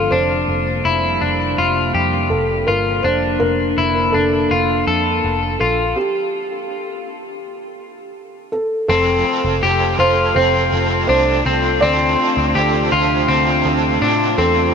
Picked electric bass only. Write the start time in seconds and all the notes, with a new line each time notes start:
0.12 F1
0.48 F1
0.85 F1
1.22 F1
1.58 F1
1.95 F2
2.31 F1
2.68 G1
3.05 F1
3.41 F1
3.78 F1
4.14 F1
4.51 F1
4.87 F2
5.24 F1
5.61 A#1
8.89 F1
9.45 F1
9.63 F1
9.99 F1
10.36 F1
10.72 F1
11.09 C2
11.46 C2
11.82 D2
12.37 D2
12.56 D2
12.92 D2
13.29 D2
13.65 D2
14.02 A2
14.38 E2